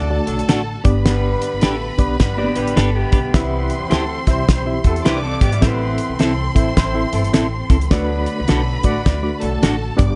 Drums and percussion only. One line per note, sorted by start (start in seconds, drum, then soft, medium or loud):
0.27 closed hi-hat medium
0.39 closed hi-hat medium
0.49 snare loud
0.49 closed hi-hat loud
0.85 kick loud
0.85 closed hi-hat medium
1.06 snare loud
1.06 closed hi-hat loud
1.42 closed hi-hat medium
1.61 snare loud
1.61 closed hi-hat medium
1.98 kick medium
1.98 closed hi-hat medium
2.20 kick loud
2.20 snare loud
2.20 closed hi-hat medium
2.55 closed hi-hat medium
2.67 closed hi-hat soft
2.77 snare loud
2.77 closed hi-hat loud
3.12 kick loud
3.12 closed hi-hat medium
3.34 kick loud
3.34 snare loud
3.34 closed hi-hat medium
3.70 closed hi-hat medium
3.91 snare loud
3.91 closed hi-hat medium
4.27 kick medium
4.27 snare soft
4.27 closed hi-hat medium
4.49 kick medium
4.49 snare loud
4.49 closed hi-hat medium
4.84 kick medium
4.84 closed hi-hat medium
4.96 closed hi-hat soft
5.06 snare loud
5.06 closed hi-hat medium
5.41 kick loud
5.41 closed hi-hat medium
5.52 closed hi-hat medium
5.62 kick loud
5.62 snare loud
5.62 closed hi-hat loud
5.98 closed hi-hat medium
6.19 snare medium
6.19 closed hi-hat medium
6.56 kick medium
6.56 closed hi-hat medium
6.77 kick medium
6.77 snare loud
6.77 closed hi-hat medium
7.13 closed hi-hat medium
7.24 closed hi-hat soft
7.34 snare loud
7.34 closed hi-hat medium
7.70 kick loud
7.70 closed hi-hat medium
7.81 closed hi-hat medium
7.91 kick loud
7.91 snare loud
7.91 closed hi-hat medium
8.26 closed hi-hat medium
8.48 snare loud
8.48 closed hi-hat medium
8.83 kick medium
8.83 closed hi-hat medium
9.06 kick loud
9.06 snare loud
9.06 closed hi-hat medium
9.41 closed hi-hat medium
9.63 snare loud
9.63 closed hi-hat loud
9.99 kick loud
9.99 closed hi-hat medium